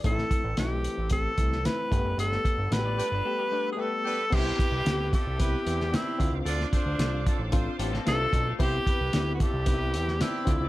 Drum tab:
CC |----------------|----------------|x---------------|----------------|
HH |x-x-x-x-x-x-x-x-|x-x-x-x---------|--x-x-x-x-x-x-x-|x-x-x-x-x-x-x-x-|
SD |-o--o------oo---|-o--o-----------|----o------oo---|-o--o------oo---|
BD |o-o-----o-o---o-|--o-------------|o-o---o-o-----o-|--o---o-o-----o-|

CC |----------------|
HH |x-x-x-x-x-x-x-x-|
SD |----o------oo---|
BD |o-o---o-o-----o-|